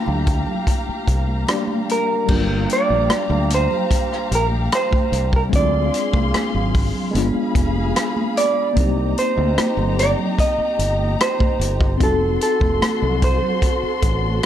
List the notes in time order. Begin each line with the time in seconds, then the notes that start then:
Already playing: A3 A#3 D4 E4 F4 G4 F5 A#5
0.06 D2, muted conga, low conga
0.27 kick, closed hi-hat
0.47 low conga
0.67 kick, closed hi-hat
0.89 muted fingered electric bass stroke
1.08 C2, kick, closed hi-hat
1.27 high conga
1.47 G3 A#3 D4 G4 D5, cross-stick, closed hi-hat, muted conga
1.67 high conga
1.89 A#4, closed hi-hat
2.26 G1 G3 A#3 G4 F5 A#5, kick, crash, muted conga, low conga
2.31 D4 F4
2.69 D5, closed hi-hat
2.89 A#1, high conga
3.10 muted fingered electric bass stroke, cross-stick, closed hi-hat, muted conga, high conga
3.30 D2, low conga
3.50 closed hi-hat
3.55 C5
3.71 low conga
3.91 kick, closed hi-hat
4.13 cross-stick
4.31 A#1 A#4, closed hi-hat
4.51 high conga
4.72 C5, cross-stick, closed hi-hat
4.91 kick, muted conga, high conga
5.12 C2, closed hi-hat
5.33 A#4, kick
5.49 D2 G#3 C4 G#4 F5 C6, kick, closed hi-hat, muted conga, low conga
5.54 D4 F4 D5
5.74 muted conga
5.94 closed hi-hat
6.13 C2, kick, high conga
6.34 muted fingered electric bass stroke, cross-stick, closed hi-hat, high conga
6.55 G#1, muted conga, low conga
6.74 kick, open hi-hat
6.95 low conga
7.11 G1 G#3 B3 G#4 F5 B5, closed hi-hat
7.16 D4 F4
7.34 muted fingered electric bass stroke, muted conga
7.55 F1, kick, closed hi-hat
7.75 high conga
7.96 cross-stick, closed hi-hat, muted conga
8.16 muted conga, high conga
8.37 D5, closed hi-hat
8.73 C2 A#3 C4 D#4 G4 A#5, kick, closed hi-hat, muted conga, low conga
8.78 D#4 G4
9.18 C5, closed hi-hat
9.37 D2, high conga
9.57 muted fingered electric bass stroke, cross-stick, closed hi-hat, muted conga, high conga
9.77 G1, muted conga, low conga
9.99 D5, cross-stick, closed hi-hat
10.19 low conga
10.39 D#5, kick, closed hi-hat, muted conga
10.58 muted fingered electric bass stroke, muted conga
10.79 G1, closed hi-hat
10.99 high conga
11.19 C5, cross-stick, closed hi-hat, muted conga
11.39 kick, high conga
11.59 G1, closed hi-hat
11.81 kick
11.97 F1 C4 D#4 F#4 A4 C6, kick, closed hi-hat, muted conga, low conga
12.02 F#4 A4
12.21 muted conga
12.41 A4, closed hi-hat
12.60 F1, kick, high conga
12.81 muted fingered electric bass stroke, cross-stick, closed hi-hat, muted conga, high conga
13.02 C2, muted conga, low conga
13.22 C5, kick, closed hi-hat
13.42 low conga
13.62 kick, closed hi-hat
13.83 muted fingered electric bass stroke
14.02 A1, kick, closed hi-hat
14.23 high conga